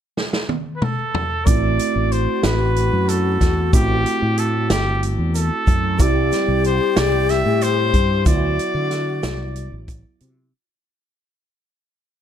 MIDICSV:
0, 0, Header, 1, 6, 480
1, 0, Start_track
1, 0, Tempo, 647948
1, 1086, Time_signature, 7, 3, 24, 8
1, 9052, End_track
2, 0, Start_track
2, 0, Title_t, "Trumpet"
2, 0, Program_c, 0, 56
2, 561, Note_on_c, 0, 71, 56
2, 615, Note_on_c, 0, 69, 78
2, 626, Note_off_c, 0, 71, 0
2, 1083, Note_on_c, 0, 74, 88
2, 1094, Note_off_c, 0, 69, 0
2, 1569, Note_on_c, 0, 72, 78
2, 1580, Note_off_c, 0, 74, 0
2, 1809, Note_on_c, 0, 71, 78
2, 1820, Note_off_c, 0, 72, 0
2, 2288, Note_on_c, 0, 69, 76
2, 2299, Note_off_c, 0, 71, 0
2, 2762, Note_off_c, 0, 69, 0
2, 2766, Note_on_c, 0, 67, 90
2, 3251, Note_on_c, 0, 69, 83
2, 3262, Note_off_c, 0, 67, 0
2, 3483, Note_off_c, 0, 69, 0
2, 3488, Note_on_c, 0, 67, 86
2, 3747, Note_off_c, 0, 67, 0
2, 3969, Note_on_c, 0, 69, 86
2, 4450, Note_on_c, 0, 74, 95
2, 4461, Note_off_c, 0, 69, 0
2, 4925, Note_off_c, 0, 74, 0
2, 4934, Note_on_c, 0, 72, 91
2, 5168, Note_on_c, 0, 74, 90
2, 5179, Note_off_c, 0, 72, 0
2, 5407, Note_on_c, 0, 76, 104
2, 5418, Note_off_c, 0, 74, 0
2, 5649, Note_on_c, 0, 72, 103
2, 5660, Note_off_c, 0, 76, 0
2, 6125, Note_off_c, 0, 72, 0
2, 6128, Note_on_c, 0, 74, 98
2, 7295, Note_off_c, 0, 74, 0
2, 9052, End_track
3, 0, Start_track
3, 0, Title_t, "Shakuhachi"
3, 0, Program_c, 1, 77
3, 1079, Note_on_c, 1, 65, 103
3, 1182, Note_off_c, 1, 65, 0
3, 1182, Note_on_c, 1, 66, 103
3, 4210, Note_off_c, 1, 66, 0
3, 4434, Note_on_c, 1, 67, 127
3, 6114, Note_on_c, 1, 66, 103
3, 6125, Note_off_c, 1, 67, 0
3, 7359, Note_off_c, 1, 66, 0
3, 7565, Note_on_c, 1, 66, 62
3, 7787, Note_off_c, 1, 66, 0
3, 9052, End_track
4, 0, Start_track
4, 0, Title_t, "Tine electric piano"
4, 0, Program_c, 2, 4
4, 1079, Note_on_c, 2, 57, 65
4, 1085, Note_on_c, 2, 60, 54
4, 1094, Note_on_c, 2, 64, 63
4, 2730, Note_off_c, 2, 57, 0
4, 2733, Note_off_c, 2, 60, 0
4, 2738, Note_off_c, 2, 64, 0
4, 2758, Note_on_c, 2, 57, 60
4, 2762, Note_on_c, 2, 60, 58
4, 2772, Note_on_c, 2, 64, 63
4, 4409, Note_off_c, 2, 57, 0
4, 4411, Note_off_c, 2, 60, 0
4, 4416, Note_off_c, 2, 64, 0
4, 4431, Note_on_c, 2, 55, 63
4, 4440, Note_on_c, 2, 60, 57
4, 4447, Note_on_c, 2, 64, 72
4, 6086, Note_off_c, 2, 55, 0
4, 6090, Note_off_c, 2, 60, 0
4, 6093, Note_off_c, 2, 64, 0
4, 6110, Note_on_c, 2, 54, 56
4, 6119, Note_on_c, 2, 59, 57
4, 6124, Note_on_c, 2, 64, 69
4, 7766, Note_off_c, 2, 54, 0
4, 7771, Note_off_c, 2, 59, 0
4, 7773, Note_off_c, 2, 64, 0
4, 9052, End_track
5, 0, Start_track
5, 0, Title_t, "Fretless electric bass"
5, 0, Program_c, 3, 35
5, 1088, Note_on_c, 3, 33, 86
5, 1311, Note_off_c, 3, 33, 0
5, 1447, Note_on_c, 3, 33, 74
5, 1670, Note_off_c, 3, 33, 0
5, 1805, Note_on_c, 3, 33, 77
5, 2140, Note_off_c, 3, 33, 0
5, 2167, Note_on_c, 3, 42, 79
5, 2501, Note_off_c, 3, 42, 0
5, 2526, Note_on_c, 3, 40, 73
5, 2749, Note_off_c, 3, 40, 0
5, 2767, Note_on_c, 3, 33, 94
5, 2989, Note_off_c, 3, 33, 0
5, 3126, Note_on_c, 3, 45, 80
5, 3460, Note_off_c, 3, 45, 0
5, 3482, Note_on_c, 3, 31, 84
5, 3817, Note_off_c, 3, 31, 0
5, 3839, Note_on_c, 3, 40, 81
5, 4064, Note_off_c, 3, 40, 0
5, 4200, Note_on_c, 3, 42, 76
5, 4424, Note_off_c, 3, 42, 0
5, 4443, Note_on_c, 3, 36, 92
5, 4666, Note_off_c, 3, 36, 0
5, 4800, Note_on_c, 3, 36, 82
5, 5024, Note_off_c, 3, 36, 0
5, 5162, Note_on_c, 3, 36, 79
5, 5497, Note_off_c, 3, 36, 0
5, 5521, Note_on_c, 3, 45, 82
5, 5856, Note_off_c, 3, 45, 0
5, 5879, Note_on_c, 3, 43, 76
5, 6103, Note_off_c, 3, 43, 0
5, 6120, Note_on_c, 3, 38, 103
5, 6344, Note_off_c, 3, 38, 0
5, 6476, Note_on_c, 3, 50, 77
5, 6814, Note_off_c, 3, 50, 0
5, 6840, Note_on_c, 3, 36, 82
5, 7176, Note_off_c, 3, 36, 0
5, 7199, Note_on_c, 3, 33, 79
5, 7424, Note_off_c, 3, 33, 0
5, 7562, Note_on_c, 3, 48, 70
5, 7786, Note_off_c, 3, 48, 0
5, 9052, End_track
6, 0, Start_track
6, 0, Title_t, "Drums"
6, 128, Note_on_c, 9, 38, 55
6, 202, Note_off_c, 9, 38, 0
6, 246, Note_on_c, 9, 38, 62
6, 320, Note_off_c, 9, 38, 0
6, 363, Note_on_c, 9, 48, 70
6, 437, Note_off_c, 9, 48, 0
6, 606, Note_on_c, 9, 47, 84
6, 680, Note_off_c, 9, 47, 0
6, 849, Note_on_c, 9, 43, 93
6, 923, Note_off_c, 9, 43, 0
6, 1085, Note_on_c, 9, 42, 78
6, 1088, Note_on_c, 9, 36, 106
6, 1090, Note_on_c, 9, 82, 62
6, 1159, Note_off_c, 9, 42, 0
6, 1162, Note_off_c, 9, 36, 0
6, 1164, Note_off_c, 9, 82, 0
6, 1328, Note_on_c, 9, 42, 64
6, 1332, Note_on_c, 9, 82, 20
6, 1402, Note_off_c, 9, 42, 0
6, 1406, Note_off_c, 9, 82, 0
6, 1569, Note_on_c, 9, 42, 55
6, 1574, Note_on_c, 9, 82, 18
6, 1643, Note_off_c, 9, 42, 0
6, 1648, Note_off_c, 9, 82, 0
6, 1802, Note_on_c, 9, 38, 86
6, 1802, Note_on_c, 9, 42, 76
6, 1810, Note_on_c, 9, 82, 43
6, 1876, Note_off_c, 9, 38, 0
6, 1876, Note_off_c, 9, 42, 0
6, 1884, Note_off_c, 9, 82, 0
6, 2047, Note_on_c, 9, 42, 64
6, 2122, Note_off_c, 9, 42, 0
6, 2286, Note_on_c, 9, 42, 81
6, 2292, Note_on_c, 9, 82, 43
6, 2360, Note_off_c, 9, 42, 0
6, 2366, Note_off_c, 9, 82, 0
6, 2526, Note_on_c, 9, 36, 63
6, 2527, Note_on_c, 9, 38, 32
6, 2527, Note_on_c, 9, 42, 64
6, 2529, Note_on_c, 9, 82, 19
6, 2600, Note_off_c, 9, 36, 0
6, 2601, Note_off_c, 9, 38, 0
6, 2601, Note_off_c, 9, 42, 0
6, 2603, Note_off_c, 9, 82, 0
6, 2765, Note_on_c, 9, 36, 110
6, 2766, Note_on_c, 9, 42, 85
6, 2768, Note_on_c, 9, 82, 53
6, 2839, Note_off_c, 9, 36, 0
6, 2840, Note_off_c, 9, 42, 0
6, 2842, Note_off_c, 9, 82, 0
6, 3007, Note_on_c, 9, 42, 59
6, 3008, Note_on_c, 9, 82, 18
6, 3081, Note_off_c, 9, 42, 0
6, 3082, Note_off_c, 9, 82, 0
6, 3242, Note_on_c, 9, 42, 61
6, 3245, Note_on_c, 9, 82, 19
6, 3316, Note_off_c, 9, 42, 0
6, 3319, Note_off_c, 9, 82, 0
6, 3481, Note_on_c, 9, 38, 93
6, 3481, Note_on_c, 9, 42, 72
6, 3486, Note_on_c, 9, 82, 46
6, 3555, Note_off_c, 9, 38, 0
6, 3555, Note_off_c, 9, 42, 0
6, 3560, Note_off_c, 9, 82, 0
6, 3725, Note_on_c, 9, 42, 53
6, 3799, Note_off_c, 9, 42, 0
6, 3962, Note_on_c, 9, 82, 42
6, 3965, Note_on_c, 9, 42, 81
6, 4036, Note_off_c, 9, 82, 0
6, 4040, Note_off_c, 9, 42, 0
6, 4199, Note_on_c, 9, 82, 19
6, 4203, Note_on_c, 9, 36, 73
6, 4207, Note_on_c, 9, 42, 55
6, 4273, Note_off_c, 9, 82, 0
6, 4277, Note_off_c, 9, 36, 0
6, 4281, Note_off_c, 9, 42, 0
6, 4440, Note_on_c, 9, 82, 57
6, 4443, Note_on_c, 9, 36, 106
6, 4445, Note_on_c, 9, 42, 81
6, 4514, Note_off_c, 9, 82, 0
6, 4517, Note_off_c, 9, 36, 0
6, 4519, Note_off_c, 9, 42, 0
6, 4679, Note_on_c, 9, 82, 20
6, 4685, Note_on_c, 9, 38, 33
6, 4685, Note_on_c, 9, 42, 61
6, 4753, Note_off_c, 9, 82, 0
6, 4759, Note_off_c, 9, 38, 0
6, 4759, Note_off_c, 9, 42, 0
6, 4922, Note_on_c, 9, 42, 56
6, 4922, Note_on_c, 9, 82, 17
6, 4996, Note_off_c, 9, 42, 0
6, 4996, Note_off_c, 9, 82, 0
6, 5159, Note_on_c, 9, 38, 93
6, 5159, Note_on_c, 9, 42, 73
6, 5162, Note_on_c, 9, 82, 40
6, 5233, Note_off_c, 9, 38, 0
6, 5233, Note_off_c, 9, 42, 0
6, 5236, Note_off_c, 9, 82, 0
6, 5401, Note_on_c, 9, 38, 33
6, 5401, Note_on_c, 9, 42, 55
6, 5475, Note_off_c, 9, 38, 0
6, 5475, Note_off_c, 9, 42, 0
6, 5641, Note_on_c, 9, 42, 80
6, 5641, Note_on_c, 9, 82, 44
6, 5715, Note_off_c, 9, 42, 0
6, 5715, Note_off_c, 9, 82, 0
6, 5880, Note_on_c, 9, 36, 67
6, 5880, Note_on_c, 9, 42, 62
6, 5885, Note_on_c, 9, 82, 18
6, 5954, Note_off_c, 9, 36, 0
6, 5954, Note_off_c, 9, 42, 0
6, 5959, Note_off_c, 9, 82, 0
6, 6118, Note_on_c, 9, 42, 84
6, 6118, Note_on_c, 9, 82, 53
6, 6120, Note_on_c, 9, 36, 107
6, 6192, Note_off_c, 9, 42, 0
6, 6192, Note_off_c, 9, 82, 0
6, 6194, Note_off_c, 9, 36, 0
6, 6365, Note_on_c, 9, 42, 65
6, 6439, Note_off_c, 9, 42, 0
6, 6599, Note_on_c, 9, 38, 34
6, 6599, Note_on_c, 9, 42, 65
6, 6601, Note_on_c, 9, 82, 17
6, 6673, Note_off_c, 9, 38, 0
6, 6673, Note_off_c, 9, 42, 0
6, 6675, Note_off_c, 9, 82, 0
6, 6838, Note_on_c, 9, 38, 88
6, 6838, Note_on_c, 9, 42, 72
6, 6840, Note_on_c, 9, 82, 43
6, 6912, Note_off_c, 9, 38, 0
6, 6912, Note_off_c, 9, 42, 0
6, 6914, Note_off_c, 9, 82, 0
6, 7079, Note_on_c, 9, 42, 54
6, 7153, Note_off_c, 9, 42, 0
6, 7318, Note_on_c, 9, 42, 92
6, 7320, Note_on_c, 9, 36, 109
6, 7326, Note_on_c, 9, 82, 44
6, 7392, Note_off_c, 9, 42, 0
6, 7394, Note_off_c, 9, 36, 0
6, 7400, Note_off_c, 9, 82, 0
6, 7560, Note_on_c, 9, 42, 63
6, 7634, Note_off_c, 9, 42, 0
6, 9052, End_track
0, 0, End_of_file